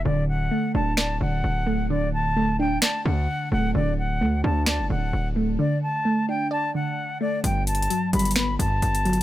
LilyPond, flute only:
\new Staff \with { instrumentName = "Flute" } { \time 4/4 \key d \major \tempo 4 = 130 d''8 fis''4 a''8 a''8 fis''4. | d''8 a''4 g''8 a''8 fis''4 fis''8 | d''8 fis''4 a''8 a''8 fis''4. | d''8 a''4 g''8 a''8 fis''4 d''8 |
g''8 a''4 b''8 b''8 a''4. | }